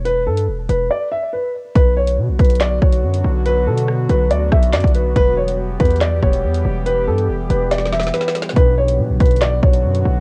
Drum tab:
HH |x-----------------x-----------------x-----------------------------------------------------------|x-----------------x-----------------x--x--x--x--x-----------------x-----------x-----------------|x-----------------x-----------------x-----------x-----------------x-----x---x---x---x-----------|x-----------------x-----------------x--x--x--x--x-----------------x-----------x-----------------|
CP |------------------------------------------------------------------------------------------------|------------------------------------------------x-----------------------------------------------|------------------------------------------------------------------------x-----------------------|------------------------------------------------x-----------------------------------------------|
SD |------------------------------------------------------------------------------------------------|------------------------------------------------o-----------------------------------------------|------------------------r-----------------------------------r-----------o-----------------------|------------------------------------------------o-----------------------------------------------|
BD |------------------------------------------------------------------------------------------------|o-----------------------------------o-----------------------o-----------------------------------|------------------------------------------------------------o-----------------o-----------------|o-----------------------------------o-----------------------o-----------------------------------|

HH |x-----------------x-----------------x-----------x-----------------x-----x-----------x-----------|x-----------------x-----------------x--x--x--x--x-----------------x-----------x-----------------|
CP |------------------------------------------------------------------------------------------------|------------------------------------------------x-----------------------------------------------|
SD |------------------------------------------------o---o---o---o---o---o---o---o---o---o---o---o---|------------------------------------------------o-----------------------------------------------|
BD |------------------------------------------------------------------------------------------------|o-----------------------------------o-----------------------o-----------------------------------|